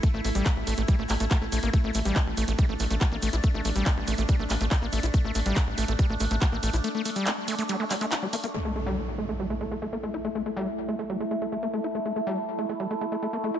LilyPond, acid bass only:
\new Staff \with { instrumentName = "Acid bass" } { \time 4/4 \tempo 4 = 141 a16 a16 a16 g16 a16 r16 a16 a16 g16 a16 a16 a16 a16 a16 a16 bes16 | a16 a16 a16 g16 a16 r16 a16 a16 g16 a16 a16 a16 a16 bes16 a16 e'16 | a16 a16 a16 g16 a16 r16 a16 a16 g16 a16 a16 a16 a16 bes16 a16 e'16 | a16 a16 a16 g16 a16 r16 a16 a16 g16 a16 a16 a16 a16 bes16 a16 e'16 |
a16 a16 a16 g16 a16 r16 a16 a16 g16 a16 g16 a16 e'16 g16 bes16 bes16 | a16 a16 a16 g16 a16 r16 a16 a16 g16 a16 a16 a16 a16 bes16 a16 e'16 | a16 a16 a16 g16 a16 r16 a16 a16 g16 a16 a16 a16 a16 bes16 a16 e'16 | a16 a16 a16 g16 a16 r16 a16 a16 g16 a16 a16 a16 a16 bes16 a16 e'16 | }